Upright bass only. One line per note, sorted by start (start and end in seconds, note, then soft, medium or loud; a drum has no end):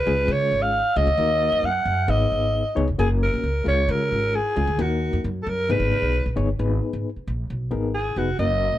0.07 0.26 C#2 loud
0.28 0.48 C#3 loud
0.52 0.80 G#1 medium
0.96 1.06 C#2 loud
1.07 1.17 D2 medium
1.18 1.47 D#2 loud
1.52 1.62 F2 medium
1.63 1.83 F#2 medium
1.85 2.05 F#2 medium
2.08 2.28 G#1 loud
2.32 2.60 G#1 medium
2.77 2.86 C#2 loud
2.88 2.97 F1 medium
2.99 3.28 F#1 loud
3.34 3.43 A#1 medium
3.44 3.63 C#2 medium
3.66 3.85 C#2 loud
3.88 4.08 C#3 loud
4.12 4.40 G#1 medium
4.56 4.66 C#2 medium
4.67 4.77 D2 medium
4.79 5.08 D#2 loud
5.13 5.22 F2 medium
5.24 5.43 F#2 medium
5.47 5.66 F#2 medium
5.70 5.79 G#1 medium
5.80 5.89 G#1 medium
5.92 6.01 C#2 medium
6.02 6.22 B1 medium
6.26 6.35 A#1 medium
6.37 6.56 G1 medium
6.59 6.78 G#1 loud
6.93 7.03 G#1 medium
7.16 muted upright bass stroke soft
7.27 7.46 A#1 medium
7.50 7.69 B1 medium
7.71 8.10 G#1 medium
8.16 8.36 F1 medium
8.39 8.68 F#1 medium
8.72 8.78 A#1 medium